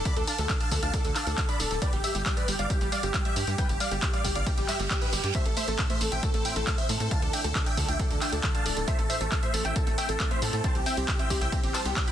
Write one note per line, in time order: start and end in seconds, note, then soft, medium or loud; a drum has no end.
0.05 0.11 D3 medium
0.05 0.15 D5 medium
0.05 0.15 B5 medium
0.05 kick loud
0.05 closed hi-hat medium
0.05 tambourine soft
0.16 0.25 D2 medium
0.16 0.22 D4 medium
0.16 0.26 A4 medium
0.16 closed hi-hat medium
0.27 0.31 D4 medium
0.27 0.37 F5 medium
0.27 0.37 A5 loud
0.27 0.37 A5 medium
0.27 open hi-hat loud
0.27 tambourine medium
0.38 0.47 D2 medium
0.38 0.44 D3 medium
0.38 0.48 A4 medium
0.38 closed hi-hat medium
0.38 tambourine soft
0.49 0.55 D4 medium
0.49 0.59 A4 medium
0.49 kick loud
0.49 clap loud
0.49 closed hi-hat medium
0.49 tambourine soft
0.60 0.64 D4 medium
0.60 0.70 F5 medium
0.60 0.70 A5 medium
0.60 closed hi-hat medium
0.60 tambourine soft
0.71 0.80 D2 medium
0.71 0.77 D3 medium
0.71 0.81 A4 medium
0.71 kick medium
0.71 open hi-hat loud
0.71 tambourine medium
0.83 0.91 D2 medium
0.83 0.88 D4 medium
0.83 0.92 F5 medium
0.83 0.92 A5 loud
0.83 0.93 A5 loud
0.83 closed hi-hat medium
0.83 tambourine soft
0.94 0.97 D4 medium
0.94 1.03 A4 medium
0.94 kick loud
0.94 closed hi-hat medium
0.94 tambourine soft
1.05 1.13 D2 medium
1.05 1.10 D3 medium
1.05 1.14 A4 medium
1.05 1.15 A4 medium
1.05 closed hi-hat medium
1.05 tambourine soft
1.16 1.21 D4 medium
1.16 1.25 F5 medium
1.16 1.25 A5 loud
1.16 clap medium
1.16 open hi-hat loud
1.16 tambourine medium
1.27 1.35 D2 medium
1.27 1.30 D4 medium
1.27 1.36 A4 medium
1.27 1.37 A4 medium
1.27 closed hi-hat medium
1.27 tambourine soft
1.38 1.43 D3 medium
1.38 1.48 A4 medium
1.38 kick loud
1.38 clap loud
1.38 closed hi-hat medium
1.38 tambourine soft
1.49 1.54 D4 medium
1.49 1.58 D5 medium
1.49 1.58 B5 medium
1.49 1.59 B5 loud
1.49 closed hi-hat medium
1.49 tambourine soft
1.60 1.68 D1 loud
1.60 1.63 D4 medium
1.60 1.70 A4 medium
1.60 open hi-hat loud
1.60 tambourine medium
1.71 1.79 D1 medium
1.71 1.76 D3 medium
1.71 1.81 A4 medium
1.71 closed hi-hat medium
1.71 tambourine soft
1.82 1.87 G3 medium
1.82 1.92 B4 medium
1.82 1.92 D5 medium
1.82 1.92 D5 loud
1.82 kick loud
1.82 closed hi-hat medium
1.82 tambourine soft
1.93 2.01 G1 medium
1.93 1.96 G3 medium
1.93 2.03 G4 medium
1.93 closed hi-hat medium
2.04 2.09 G2 medium
2.04 2.14 G4 medium
2.04 2.14 E5 medium
2.04 2.14 E5 loud
2.04 open hi-hat loud
2.04 tambourine medium
2.15 2.23 G1 medium
2.15 2.20 G3 medium
2.15 2.25 G4 medium
2.15 closed hi-hat medium
2.15 tambourine soft
2.26 kick loud
2.26 clap loud
2.26 closed hi-hat medium
2.26 tambourine soft
2.37 2.42 G2 medium
2.37 2.47 B4 medium
2.37 2.47 D5 medium
2.37 closed hi-hat medium
2.37 tambourine soft
2.48 2.56 G1 medium
2.48 2.53 G3 medium
2.48 2.58 G4 medium
2.48 open hi-hat loud
2.48 tambourine medium
2.59 2.67 G1 medium
2.59 2.62 G3 medium
2.59 2.69 D5 medium
2.59 2.69 F5 medium
2.59 2.69 F5 loud
2.59 closed hi-hat medium
2.59 tambourine soft
2.70 2.75 G2 medium
2.70 2.80 G4 medium
2.70 kick loud
2.70 closed hi-hat medium
2.70 tambourine soft
2.81 2.90 G1 medium
2.81 2.86 G3 medium
2.81 2.91 G4 medium
2.81 closed hi-hat medium
2.81 tambourine soft
2.92 2.95 G3 medium
2.92 3.02 D5 medium
2.92 3.02 F5 loud
2.92 open hi-hat loud
2.92 tambourine medium
3.03 3.12 G1 medium
3.03 3.09 G2 medium
3.03 3.13 G4 medium
3.03 closed hi-hat medium
3.03 tambourine soft
3.14 3.20 G3 medium
3.14 3.24 G4 medium
3.14 kick loud
3.14 clap loud
3.14 closed hi-hat medium
3.14 tambourine soft
3.25 3.28 G3 medium
3.25 3.35 G4 medium
3.25 3.35 E5 medium
3.25 3.35 E5 loud
3.25 closed hi-hat medium
3.36 3.45 G2 medium
3.36 3.42 G2 medium
3.36 3.46 G4 medium
3.36 open hi-hat loud
3.36 tambourine medium
3.47 3.56 G2 medium
3.47 3.53 G3 medium
3.47 3.57 G4 medium
3.47 closed hi-hat medium
3.47 tambourine soft
3.58 3.62 G3 medium
3.58 3.68 B4 medium
3.58 3.68 G5 medium
3.58 kick loud
3.58 closed hi-hat medium
3.58 tambourine soft
3.69 3.78 G1 medium
3.69 3.75 G2 medium
3.69 3.79 G4 medium
3.69 closed hi-hat medium
3.69 tambourine soft
3.80 3.86 G3 medium
3.80 3.90 D5 medium
3.80 3.90 F5 medium
3.80 3.90 F5 loud
3.80 open hi-hat loud
3.80 tambourine medium
3.91 4.00 G1 medium
3.91 3.95 G3 medium
3.91 4.01 G4 medium
3.91 closed hi-hat medium
3.91 tambourine soft
4.02 4.08 G2 medium
4.02 4.12 G4 medium
4.02 kick loud
4.02 clap loud
4.02 closed hi-hat medium
4.02 tambourine soft
4.13 4.19 G3 medium
4.13 4.23 D5 medium
4.13 4.23 F5 medium
4.13 closed hi-hat medium
4.13 tambourine soft
4.24 4.33 G1 medium
4.24 4.28 G3 medium
4.24 4.34 G4 medium
4.24 kick medium
4.24 open hi-hat loud
4.24 tambourine medium
4.35 4.44 G1 medium
4.35 4.41 G2 medium
4.35 4.45 D5 medium
4.35 4.45 F5 loud
4.35 4.45 F5 medium
4.35 closed hi-hat medium
4.35 tambourine soft
4.46 4.52 G3 medium
4.46 4.56 G4 medium
4.46 kick loud
4.46 closed hi-hat medium
4.46 tambourine soft
4.46 reverse cymbal medium
4.57 4.66 G1 medium
4.57 4.61 G3 medium
4.57 4.67 G4 medium
4.57 closed hi-hat medium
4.57 tambourine soft
4.68 4.74 G2 medium
4.68 4.78 G4 medium
4.68 4.78 E5 medium
4.68 4.78 E5 loud
4.68 clap medium
4.68 open hi-hat loud
4.68 tambourine medium
4.80 4.88 G1 medium
4.80 4.85 G3 medium
4.80 4.89 G4 medium
4.80 closed hi-hat medium
4.80 tambourine soft
4.91 4.94 G3 medium
4.91 5.00 G4 medium
4.91 5.01 G4 medium
4.91 kick loud
4.91 clap loud
4.91 closed hi-hat medium
4.91 tambourine soft
5.02 5.07 G2 medium
5.02 5.12 G4 medium
5.02 5.12 B4 loud
5.02 closed hi-hat medium
5.02 tambourine soft
5.13 5.21 G1 loud
5.13 5.18 G3 medium
5.13 5.23 G4 medium
5.13 open hi-hat loud
5.13 tambourine medium
5.24 5.32 G2 medium
5.24 5.27 G3 medium
5.24 5.34 G4 medium
5.24 closed hi-hat medium
5.24 tambourine soft
5.35 7.09 A3 medium
5.35 5.38 A3 medium
5.35 7.09 C4 medium
5.35 7.09 E4 medium
5.35 7.09 C5 medium
5.35 5.45 C5 medium
5.35 5.45 E5 loud
5.35 kick loud
5.35 closed hi-hat medium
5.35 tambourine soft
5.46 5.54 A1 medium
5.46 5.51 A2 medium
5.46 5.56 A4 medium
5.46 closed hi-hat medium
5.57 5.62 A3 medium
5.57 5.67 C5 medium
5.57 5.67 E5 loud
5.57 open hi-hat loud
5.57 tambourine medium
5.68 5.76 A1 medium
5.68 5.71 A3 medium
5.68 5.78 A4 medium
5.68 closed hi-hat medium
5.68 tambourine soft
5.79 5.84 A2 medium
5.79 5.89 A4 medium
5.79 kick loud
5.79 clap loud
5.79 closed hi-hat medium
5.79 tambourine soft
5.90 5.95 A3 medium
5.90 6.00 C5 medium
5.90 6.00 E5 medium
5.90 closed hi-hat medium
5.90 tambourine soft
6.01 6.09 A1 loud
6.01 6.04 A3 medium
6.01 6.11 A4 medium
6.01 open hi-hat loud
6.01 tambourine medium
6.12 6.20 A1 medium
6.12 6.17 A2 medium
6.12 6.22 E5 medium
6.12 6.22 G5 medium
6.12 6.22 G5 loud
6.12 closed hi-hat medium
6.12 tambourine soft
6.23 6.28 A3 medium
6.23 6.33 A4 medium
6.23 kick loud
6.23 closed hi-hat medium
6.23 tambourine soft
6.34 6.42 A1 medium
6.34 6.37 A3 medium
6.34 6.44 A4 medium
6.34 closed hi-hat medium
6.34 tambourine soft
6.45 6.50 A2 medium
6.45 6.55 E5 medium
6.45 6.55 G5 loud
6.45 open hi-hat loud
6.45 tambourine medium
6.56 6.65 A1 medium
6.56 6.61 A3 medium
6.56 6.66 A4 medium
6.56 closed hi-hat medium
6.56 tambourine soft
6.67 6.70 A3 medium
6.67 6.77 A4 medium
6.67 kick loud
6.67 clap loud
6.67 closed hi-hat medium
6.67 tambourine soft
6.78 6.84 A2 medium
6.78 6.88 C5 medium
6.78 6.88 E5 medium
6.78 closed hi-hat medium
6.89 6.98 A2 loud
6.89 6.95 A3 medium
6.89 6.99 A4 medium
6.89 open hi-hat loud
6.89 tambourine medium
7.00 7.09 A2 medium
7.00 7.03 A3 medium
7.00 7.10 A4 medium
7.00 closed hi-hat medium
7.00 tambourine soft
7.11 7.17 D3 medium
7.11 10.61 A3 medium
7.11 8.86 D4 medium
7.11 8.86 F4 medium
7.11 8.86 D5 medium
7.11 7.21 F5 medium
7.11 7.21 A5 medium
7.11 kick loud
7.11 closed hi-hat medium
7.11 tambourine soft
7.22 7.31 D2 medium
7.22 7.28 D4 medium
7.22 7.32 A4 medium
7.22 closed hi-hat medium
7.33 7.37 D4 medium
7.33 7.43 E5 medium
7.33 7.43 G5 loud
7.33 open hi-hat loud
7.33 tambourine medium
7.44 7.53 D2 medium
7.44 7.50 D3 medium
7.44 7.54 A4 medium
7.44 closed hi-hat medium
7.44 tambourine soft
7.55 7.61 D4 medium
7.55 7.65 A4 medium
7.55 kick loud
7.55 clap loud
7.55 closed hi-hat medium
7.55 tambourine soft
7.66 7.70 D4 medium
7.66 7.76 E5 medium
7.66 7.76 G5 medium
7.66 closed hi-hat medium
7.66 tambourine soft
7.77 7.86 D2 loud
7.77 7.83 D3 medium
7.77 7.87 A4 medium
7.77 kick medium
7.77 open hi-hat loud
7.77 tambourine medium
7.88 7.97 D2 medium
7.88 7.94 D4 medium
7.88 7.98 E5 medium
7.88 7.98 G5 loud
7.88 closed hi-hat medium
7.88 tambourine soft
7.99 8.03 D4 medium
7.99 8.09 A4 medium
7.99 kick loud
7.99 closed hi-hat medium
7.99 tambourine soft
8.10 8.19 D2 medium
8.10 8.16 D3 medium
8.10 8.20 A4 medium
8.10 closed hi-hat medium
8.10 tambourine soft
8.21 8.27 D4 medium
8.21 8.31 E5 medium
8.21 8.31 G5 medium
8.21 8.31 G5 loud
8.21 clap medium
8.21 open hi-hat loud
8.21 tambourine medium
8.32 8.41 D2 medium
8.32 8.36 D4 medium
8.32 8.42 A4 medium
8.32 closed hi-hat medium
8.32 tambourine soft
8.43 8.49 D3 medium
8.43 8.53 A4 medium
8.43 kick loud
8.43 clap loud
8.43 closed hi-hat medium
8.43 tambourine soft
8.54 8.60 D4 medium
8.54 8.64 F5 medium
8.54 8.64 A5 loud
8.54 closed hi-hat medium
8.54 tambourine soft
8.65 8.74 D1 medium
8.65 8.69 D4 medium
8.65 8.75 A4 medium
8.65 open hi-hat loud
8.65 tambourine medium
8.77 8.85 D1 medium
8.77 8.82 D3 medium
8.77 8.86 A4 medium
8.77 8.87 A4 medium
8.77 closed hi-hat medium
8.77 tambourine soft
8.88 8.93 A3 medium
8.88 12.12 C4 medium
8.88 12.12 E4 medium
8.88 12.12 C5 medium
8.88 8.98 C5 medium
8.88 8.97 E5 loud
8.88 8.98 E5 loud
8.88 kick loud
8.88 closed hi-hat medium
8.88 tambourine soft
8.99 9.07 A1 medium
8.99 9.02 A3 medium
8.99 9.08 A4 medium
8.99 9.09 A4 medium
8.99 closed hi-hat medium
9.10 9.15 A2 medium
9.10 9.20 C5 medium
9.10 9.19 E5 medium
9.10 9.20 E5 loud
9.10 open hi-hat loud
9.10 tambourine medium
9.21 9.29 A1 medium
9.21 9.26 A3 medium
9.21 9.31 A4 medium
9.21 closed hi-hat medium
9.21 tambourine soft
9.32 9.35 A3 medium
9.32 9.42 A4 medium
9.32 kick loud
9.32 clap loud
9.32 closed hi-hat medium
9.32 tambourine soft
9.43 9.48 A2 medium
9.43 9.53 C5 medium
9.43 9.53 E5 medium
9.43 closed hi-hat medium
9.43 tambourine soft
9.54 9.62 A1 loud
9.54 9.59 A3 medium
9.54 9.64 A4 medium
9.54 open hi-hat loud
9.54 tambourine medium
9.65 9.73 A1 medium
9.65 9.68 A3 medium
9.65 9.75 E5 medium
9.65 9.75 G5 loud
9.65 9.75 G5 medium
9.65 closed hi-hat medium
9.65 tambourine soft
9.76 9.81 A2 medium
9.76 9.86 A4 medium
9.76 kick loud
9.76 closed hi-hat medium
9.76 tambourine soft
9.87 9.95 A1 medium
9.87 9.92 A3 medium
9.87 9.97 A4 medium
9.87 closed hi-hat medium
9.87 tambourine soft
9.98 10.01 A3 medium
9.98 10.08 E5 medium
9.98 10.08 G5 loud
9.98 open hi-hat loud
9.98 tambourine medium
10.09 10.17 A1 medium
10.09 10.14 A2 medium
10.09 10.19 A4 medium
10.09 closed hi-hat soft
10.09 tambourine soft
10.20 10.26 A3 medium
10.20 kick loud
10.20 clap loud
10.20 closed hi-hat medium
10.20 tambourine soft
10.31 10.34 A3 medium
10.31 10.41 C5 medium
10.31 10.41 E5 loud
10.31 10.41 E5 medium
10.31 closed hi-hat medium
10.42 10.48 A2 medium
10.42 10.51 A2 loud
10.42 10.52 A4 medium
10.42 open hi-hat loud
10.42 tambourine medium
10.53 10.62 A2 medium
10.53 10.59 A3 medium
10.53 10.63 A4 medium
10.53 closed hi-hat medium
10.53 tambourine soft
10.64 12.12 G3 medium
10.64 10.67 C4 medium
10.64 10.74 C5 medium
10.64 10.74 A5 medium
10.64 kick loud
10.64 closed hi-hat medium
10.64 tambourine soft
10.75 10.84 C2 medium
10.75 10.81 C3 medium
10.75 10.85 G4 medium
10.75 closed hi-hat medium
10.86 10.92 C4 medium
10.86 10.96 E5 medium
10.86 10.96 G5 loud
10.86 10.96 G5 medium
10.86 open hi-hat loud
10.86 tambourine medium
10.97 11.06 C2 medium
10.97 11.01 C4 medium
10.97 11.07 G4 medium
10.97 closed hi-hat medium
10.97 tambourine soft
11.08 11.14 C3 medium
11.08 11.18 G4 medium
11.08 kick loud
11.08 clap loud
11.08 closed hi-hat medium
11.08 tambourine soft
11.19 11.25 C4 medium
11.19 11.29 E5 medium
11.19 11.29 G5 medium
11.19 closed hi-hat medium
11.19 tambourine soft
11.30 11.39 C2 medium
11.30 11.34 C4 medium
11.30 11.40 G4 medium
11.30 kick medium
11.30 open hi-hat loud
11.30 tambourine medium
11.41 11.50 C2 medium
11.41 11.47 C3 medium
11.41 11.51 E5 medium
11.41 11.51 G5 medium
11.41 11.51 G5 loud
11.41 closed hi-hat medium
11.41 tambourine soft
11.52 11.58 C4 medium
11.52 11.62 G4 medium
11.52 kick loud
11.52 closed hi-hat medium
11.52 tambourine soft
11.63 11.72 G1 medium
11.63 11.67 C4 medium
11.63 11.73 G4 medium
11.63 closed hi-hat medium
11.63 tambourine soft
11.74 11.84 C5 medium
11.74 11.80 C5 medium
11.74 11.84 A5 loud
11.74 11.84 A5 medium
11.74 clap medium
11.74 open hi-hat loud
11.74 tambourine medium
11.85 11.94 C2 medium
11.85 11.89 B3 loud
11.85 11.95 G4 medium
11.85 closed hi-hat soft
11.85 tambourine soft
11.96 12.06 G4 medium
11.96 12.02 G4 medium
11.96 kick loud
11.96 clap loud
11.96 closed hi-hat medium
11.96 tambourine soft
12.07 12.12 E4 medium
12.07 12.12 G5 medium
12.07 12.12 B5 loud
12.07 closed hi-hat medium
12.07 tambourine soft